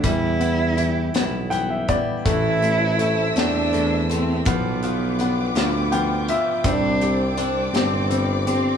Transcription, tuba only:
X:1
M:6/8
L:1/8
Q:3/8=55
K:G
V:1 name="Tuba" clef=bass
E,,3 B,,,2 z | A,,,3 E,,3 | B,,,3 D,,2 z | C,,3 G,,,3 |]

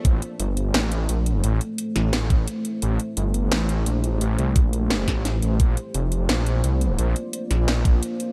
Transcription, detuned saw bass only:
X:1
M:4/4
L:1/8
Q:1/4=173
K:Aphr
V:1 name="Detuned saw bass" clef=bass
A,,, z G,,,2 A,,,2 B,,,2 | A,,, z2 A,,,3 z2 | A,,, z G,,,2 A,,,2 B,,,2 | A,,, C,, B,,,3 A,,,2 A,,, |
B,,, z F,,,2 B,,,2 C,,2 | B,,, z2 B,,,3 z2 |]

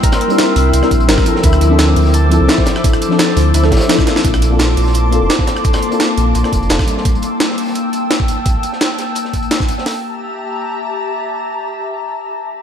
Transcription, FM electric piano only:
X:1
M:4/4
L:1/16
Q:1/4=171
K:Gdor
V:1 name="FM electric piano"
[G,CDEB]3 [G,CDEB]6 [G,CDEB]3 [G,CDEB]2 [F,CDEA]2- | [F,CDEA]3 [F,CDEA]6- [F,CDEA] [F,CDEA]6- | [F,CDEA]3 [F,CDEA]6 [F,CDEA]3 [F,CDEA]2 [B,CDFA]2- | [B,CDFA]2 z [B,CDFA]6- [B,CDFA] [B,CDFA]6- |
[B,CDFA]3 [B,CDFA]6 [B,CDFA]3 [B,CDFA]2 [G,B,DEA]2- | [G,B,DEA]2 z12 z2 | z16 | z16 |
z16 |]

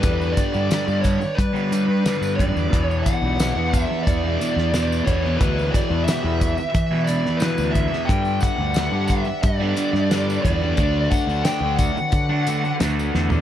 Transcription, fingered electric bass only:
X:1
M:4/4
L:1/16
Q:1/4=89
K:Em
V:1 name="Fingered electric bass" clef=bass
E,,2 z G,, z G,,2 z G,4- G, G,, F,, E,, | E,,2 z B,,,2 E,,2 z E,,2 z E,,3 E,,2 | D,,2 z E,, z E,,2 z E,4- E, D,,2 z | G,,2 z D,,2 G,,2 z G,,2 z G,,3 E,,2 |
D,,2 z D,, z D,,2 z D,4 D,,2 E,,2 |]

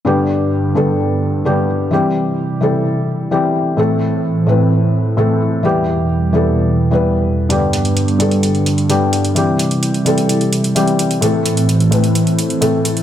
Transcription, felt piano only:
X:1
M:4/4
L:1/16
Q:1/4=129
K:G
V:1 name="Felt piano" clef=bass
[G,,D,G,B,G]6 [G,,D,G,B,A]6 [G,,D,G,B,G]4 | [E,G,CG]6 [E,G,CA]6 [E,G,CG]4 | [A,,E,A,CA]6 [A,,E,A,CB]6 [A,,E,A,CA]4 | [E,G,B,G]6 [E,G,B,A]4- [E,G,B,A] [E,G,B,B]4- [E,G,B,B] |
[G,,D,G,B,G]6 [G,,D,G,B,A]6 [G,,D,G,B,G]4 | [E,G,CG]6 [E,G,CA]6 [E,G,CG]4 | [A,,E,A,CA]6 [A,,E,A,CB]6 [A,,E,A,CA]4 |]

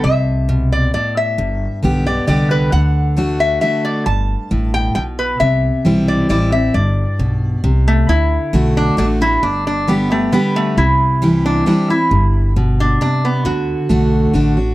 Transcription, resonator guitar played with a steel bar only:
X:1
M:3/4
L:1/8
Q:1/4=134
K:G
V:1 name="Resonator guitar played with a steel bar"
e3 d d e- | e2 z d d B | f3 e e d | a3 g g B |
e3 d d e | d4- d A, | E3 D D E | D D B, A, B, A, |
E3 D D E- | E2 z D D B, | F6 |]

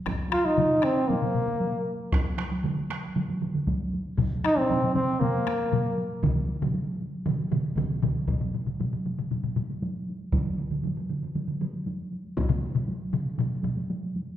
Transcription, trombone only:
X:1
M:4/4
L:1/16
Q:1/4=117
K:none
V:1 name="Trombone"
z2 F _E3 C2 _B,6 z2 | z16 | z2 _E C3 C2 _B,6 z2 | z16 |
z16 | z16 | z16 |]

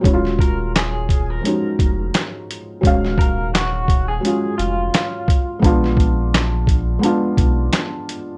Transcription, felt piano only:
X:1
M:4/4
L:1/8
Q:"Swing 16ths" 1/4=86
K:Ebm
V:1 name="Felt piano"
[G,A,D_F=F]3 z [F,G,A,DE]3 z | [G,A,Df]3 z [G,A,DF]3 z | [A,C=DF]3 z [A,CDF]3 z |]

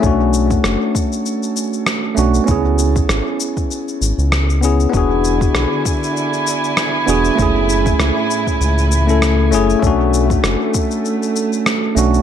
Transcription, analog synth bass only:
X:1
M:4/4
L:1/16
Q:"Swing 16ths" 1/4=98
K:Bdor
V:1 name="Analog synth bass" clef=bass
B,,,4 F,,, z8 z B,,, z | C,,4 G,,, z4 z G,,, C,,4- C,, | E,,,4 B,,, z8 z E,,, z | F,,,4 C,, z3 C,,6 F,,, z |
B,,,4 F,,, z8 z B,,, z |]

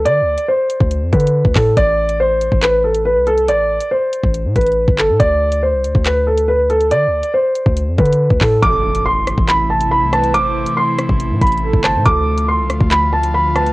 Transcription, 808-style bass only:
X:1
M:4/4
L:1/16
Q:1/4=140
K:Am
V:1 name="808-style bass" clef=bass
D,3/2 D,,3/2 z4 D,,2 F,, D,3 D,, A,,2 | A,,,6- A,,, A,,,6 C,,3 | A,,,3 z4 A,,,2 A,, A,,,3 G,,,2 A,, | D,,4- D,, C,, D,, D,,8- D,, |
D,3/2 D,,3/2 z4 D,,2 F,, D,3 D,, A,,2 | A,,,6- A,,, A,,,6 C,,3 | A,,,3 z4 A,,,2 A,, A,,,3 G,,,2 A,, | D,,4- D,, C,, D,, D,,8- D,, |]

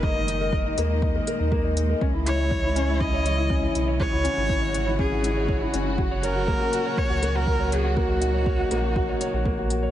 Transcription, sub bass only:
X:1
M:4/4
L:1/16
Q:1/4=121
K:C#dor
V:1 name="Sub bass" clef=bass
F,,,4- F,,, z D,,3 z2 D,,4 z | C,,12- C,, z B,,,2 | z C,, z G,,,8- G,,,2 z F,,,2- | F,,,4 z4 z C,,6- C,,- |
C,,4- C,, z A,,,3 z2 A,,,4 z |]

